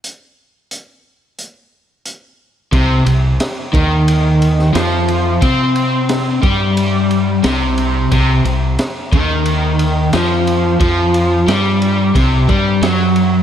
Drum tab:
RD |----------------|x-x-x-x-x-x-x-x-|x-x-x-x-x-x-x-x-|x-x-x-x-x-x-x-x-|
HH |x---x---x---x---|----------------|----------------|----------------|
SD |----------------|----o------oo---|----o-------o---|----o-------o---|
BD |----------------|o-----o---------|o-----o---------|o-----o---------|

RD |x-x-x-x-x-x-x-x-|
HH |----------------|
SD |----o-------o---|
BD |o-------o-o-----|